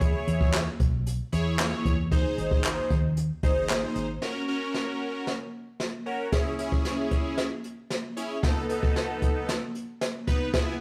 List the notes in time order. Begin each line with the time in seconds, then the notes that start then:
Already playing: E2 E4 G#4 C#5
0.01 kick, closed hi-hat
0.27 E2, closed hi-hat
0.41 kick
0.54 snare, clap, closed hi-hat
0.80 B1, kick, closed hi-hat
1.06 closed hi-hat
1.32 E2 E4 G#4 C#5, closed hi-hat
1.59 snare, clap, closed hi-hat
1.85 E2, kick, closed hi-hat
2.11 D#4 G#4 C5, kick, closed hi-hat
2.38 G#1, closed hi-hat
2.51 kick
2.64 snare, clap, closed hi-hat
2.90 D#2, kick, closed hi-hat
3.17 closed hi-hat
3.43 G#1 D#4 G#4 C5, kick, closed hi-hat
3.70 snare, clap, closed hi-hat
3.95 G#1, closed hi-hat
4.22 C#4 F#4 A#4, snare
4.48 C#4 F#4 A#4
4.74 snare
5.27 snare
5.80 snare
6.06 C#4 F#4 A#4
6.32 C#4 E4 G#4, kick, snare, closed hi-hat
6.58 C#4 E4 G#4, closed hi-hat
6.72 kick
6.85 snare, closed hi-hat
7.11 kick, closed hi-hat
7.38 snare, closed hi-hat
7.64 closed hi-hat
7.90 snare, closed hi-hat
8.16 C#4 E4 G#4, closed hi-hat
8.43 B3 D#4 A4, kick, snare, closed hi-hat
8.69 B3 D#4 A4, closed hi-hat
8.83 kick
8.96 snare, closed hi-hat
9.22 kick, closed hi-hat
9.49 snare, closed hi-hat
9.75 closed hi-hat
10.01 snare, closed hi-hat
10.27 B3 D#4 B4, kick, closed hi-hat
10.53 B3 E4 G#4, kick, snare, closed hi-hat